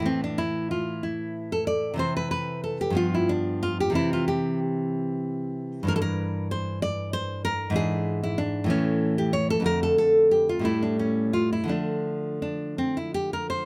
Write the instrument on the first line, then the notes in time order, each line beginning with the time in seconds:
nylon-string guitar
0.00 A2 E3
0.06 C4
0.24 D4
0.38 E4
0.71 F4
1.03 E4
1.52 A4
1.67 D5
1.94 C3 E3 C4
1.99 C5
2.17 B4
2.31 B4
2.64 A4
2.81 G4
2.90 G2 F3
2.95 B3 F4
3.14 E4
3.29 D4
3.63 F4
3.80 G4
3.90 C3 E3
3.94 C4 E4
4.13 F4
4.28 G4
5.83 G2 E3
5.87 D4 A#4
5.96 A4
6.02 A#4
6.51 C5
6.82 D5
7.13 C5
7.45 A#4
7.70 G#2 E3
7.74 D4 G#4
8.23 E4
8.38 D4
8.64 A2 E3 A3
8.70 C#4
9.18 G4
9.33 C#5
9.50 A4
9.60 F2 D3
9.64 A3 A#4
9.83 A4
9.98 A4
10.31 G4
10.49 F4
10.59 A2 G3
10.63 A3 E4
10.83 D4
10.99 C#4
11.33 F4
11.53 E4
11.64 D3 F3
11.68 A3 D4
12.42 D4
12.78 C4
12.97 E4
13.14 G4
13.33 A#4
13.50 C5